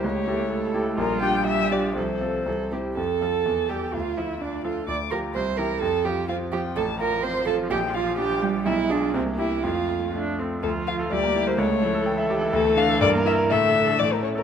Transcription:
X:1
M:2/4
L:1/16
Q:1/4=126
K:Aphr
V:1 name="Violin"
^c6 z2 | [K:F] B2 g2 e2 d2 | c6 c2 | a6 g2 |
f2 e2 d2 f2 | d'2 b2 c'2 b2 | a2 g2 f2 g2 | a2 b2 c'2 a2 |
g2 f2 g2 G2 | e2 d2 c2 e2 | f4 z4 | [K:Dm] A2 f2 d3 c |
^c6 z2 | A2 f2 d2 e2 | e4 d B ^c B |]
V:2 name="Cello"
A,2 B,2 A,4 | [K:F] G,8 | F,4 E,2 C2 | A6 G2 |
F2 E2 D2 F2 | d2 B2 c2 B2 | A2 G2 F2 G2 | A2 B2 c2 A2 |
G2 F2 G2 G,2 | E2 D2 C2 E2 | F4 z4 | [K:Dm] F,4 G,4 |
A,2 F,2 E,4- | E,8 | D,4 E,2 z2 |]
V:3 name="Grand piano"
^C,,2 [EGA]4 [EGA]2 | [K:F] B,,,2 [DFG]4 [DFG]2 | C,,2 [CFA]2 C,,2 [CEG]2 | F,,2 [FA]2 E,,2 [GA]2 |
D,,2 F2 D2 A2 | D,,2 [FG]2 C,,2 [EG]2 | F,,2 F2 C2 F2 | A,,,2 F2 C2 F2 |
B,,,2 F2 D2 G2 | =B,,,2 [F^G]2 C,,2 [E=G]2 | F,,2 F2 A,2 A2 | [K:Dm] D,, A, F A D,, B, E B |
^C,, A, E A g e G E | D,, A, D A G,, B, E B | A,, A, D A A,, A, ^C A |]
V:4 name="Viola"
G4 A4 | [K:F] F4 G4 | A4 A2 G2 | z2 F,2 z2 G,2 |
z2 F,2 z2 F,2 | z2 F,2 z2 E,2 | z2 F,2 z2 F,2 | F,8- |
F,8 | ^G,4 B,4 | A,4 D2 C2 | [K:Dm] F4 G4 |
A8- | A4 B4 | A6 z2 |]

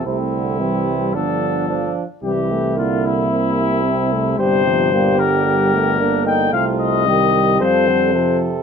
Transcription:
X:1
M:4/4
L:1/8
Q:1/4=112
K:Cmix
V:1 name="Cornet"
E4 A3 z | G2 F E4- E | [K:Gm] c3 B4 g | f e3 c3 z |]
V:2 name="Flugelhorn"
C2 C2 D2 D z | E8 | [K:Gm] G2 G4 D E | F2 G2 A2 A2 |]
V:3 name="French horn" clef=bass
A,2 G,2 F,3 z | G, A, B,4 C A, | [K:Gm] G, F, G,2 G, A, B,2 | A,2 G, G,3 F,2 |]
V:4 name="Euphonium" clef=bass
C, D, E,2 D,2 F, z | E,2 D,2 C,4 | [K:Gm] C,2 B,, D,3 D,2 | C,2 E,2 F, D, C,2 |]
V:5 name="Tuba" clef=bass
C,,4 G,,,3 z | C,,8 | [K:Gm] G,,,8 | C,,4 F,,4 |]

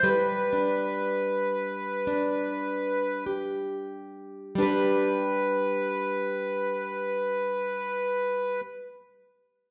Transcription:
X:1
M:4/4
L:1/8
Q:1/4=47
K:G
V:1 name="Accordion"
B6 z2 | B8 |]
V:2 name="Steel-string acoustic guitar"
[G,B] D3 D2 G2 | [G,DGB]8 |]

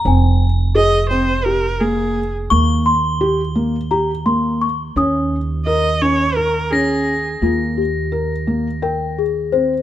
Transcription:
X:1
M:7/8
L:1/16
Q:1/4=85
K:Ebmix
V:1 name="Crotales"
z12 z2 | g''6 z8 | z8 z2 b'4- | b'2 z12 |]
V:2 name="Celesta"
a8 z6 | d'2 c'4 z2 b2 c'2 d'2 | e'8- e'2 z4 | F2 G6 B2 A2 c2 |]
V:3 name="Viola"
z4 e2 c2 B2 A3 z | z12 z2 | z4 e2 d2 B2 A4 | z12 z2 |]
V:4 name="Felt piano"
C4 A2 C2 G2 B,4 | B,4 G2 B,2 G2 B,4 | D4 B2 D2 B2 D4 | B,4 B2 B,2 g4 C2 |]
V:5 name="Upright bass" clef=bass
F,,,12- F,,,2 | E,,12- E,,2 | E,,12- E,,2 | E,,12- E,,2 |]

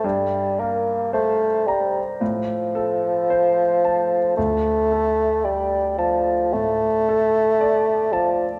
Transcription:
X:1
M:4/4
L:1/8
Q:1/4=56
K:Dm
V:1 name="Grand piano"
G,, B c b A,, A c a | D,, A d a A,, A d a |]
V:2 name="Bassoon" clef=bass
G, B, A, G, F,4 | A,2 G, F, A,3 F, |]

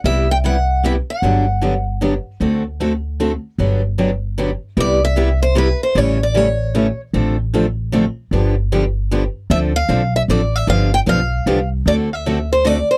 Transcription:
X:1
M:3/4
L:1/8
Q:"Swing" 1/4=152
K:G
V:1 name="Steel-string acoustic guitar"
e g f2 e f- | f3 z3 | z6 | z6 |
[K:C] d e2 c B c | ^c d c3 z | z6 | z6 |
e f2 e d e | f g f3 z | d e2 c d c |]
V:2 name="Steel-string acoustic guitar"
[C,G,B,EG] z [C,G,B,EG] z [C,G,B,EG] z | [D,F,B,DG] z [D,F,B,DG] z [D,F,B,DG] z | [D,A,CFA] z [D,A,CFA] z [D,A,CFA] z | [D,F,B,DG] z [D,F,B,DG] z [D,F,B,DG] z |
[K:C] [C,G,B,EG] z [C,G,B,EG] z [C,G,B,EG] z | [^C,E,A,^CG] z [C,E,A,CG] z [C,E,A,CG] z | [D,A,CFA] z [D,A,CFA] z [D,A,CFA] z | [D,F,B,DG] z [D,F,B,DG] z [D,F,B,DG] z |
[D,F,CDA] z [D,F,CDA] z [D,F,CDA] z | [D,F,B,DG] z [D,F,B,DG] z [D,F,B,DG] z | [D,A,C^FA] z [D,A,CFA] z [D,A,CFA] z |]
V:3 name="Steel-string acoustic guitar"
[C,G,B,EG] z [C,G,B,EG] z [C,G,B,EG] z | [D,F,B,DG] z [D,F,B,DG] z [D,F,B,DG] z | [D,A,CFA] z [D,A,CFA] z [D,A,CFA] z | [D,F,B,DG] z [D,F,B,DG] z [D,F,B,DG] z |
[K:C] [C,G,B,EG] z [C,G,B,EG] z [C,G,B,EG] z | [E,G,^CEA] z [E,G,CEA] z [E,G,CEA] z | [C,F,CDA] z [C,F,CDA] z [C,F,CDA] z | [D,F,B,DG] z [D,F,B,DG] z [D,F,B,DG] z |
[D,F,CDA] z [D,F,CDA] z [D,F,CDA] z | [D,F,B,DG] z [D,F,B,DG] z [D,F,B,DG] z | [D,A,C^FA] z [D,A,CFA] z [D,A,CFA] z |]
V:4 name="Upright bass" clef=bass
C,,6 | G,,,6 | D,,6 | G,,,6 |
[K:C] C,,6 | A,,,6 | A,,,6 | G,,,6 |
D,,2 B,,,2 A,,,2 | G,,,2 B,,,2 C,,2 | D,,6 |]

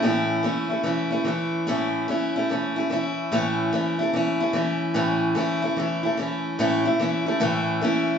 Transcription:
X:1
M:4/4
L:1/8
Q:"Swing" 1/4=146
K:A
V:1 name="Steel-string acoustic guitar"
[A,,E,A,CE]2 [E,A,CE] [A,CE] [E,A,CE] [A,CE] [E,A,CE]2 | [A,,E,A,CE]2 [E,A,CE] [A,CE] [E,A,CE] [A,CE] [E,A,CE]2 | [A,,E,A,CE]2 [E,A,CE] [A,CE] [E,A,CE] [A,CE] [E,A,CE]2 | [A,,E,A,CE]2 [E,A,CE] [A,CE] [E,A,CE] [A,CE] [E,A,CE]2 |
[A,,E,A,CE] [A,CE] [E,A,CE] [A,CE] [A,,E,A,CE]2 [E,A,CE]2 |]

